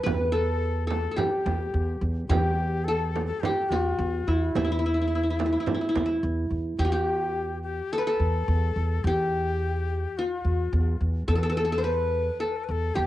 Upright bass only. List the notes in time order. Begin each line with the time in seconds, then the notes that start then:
0.06 E2
1.46 E2
1.74 E2
2.01 E2
2.29 E2
3.70 E2
3.98 E2
4.27 E2
4.55 E2
5.95 E2
6.23 E2
6.50 E2
6.79 E2
8.19 E2
8.48 E2
8.76 E2
9.04 E2
10.45 E2
10.73 E2
11.01 E2
11.28 E2
12.69 E2
12.97 E2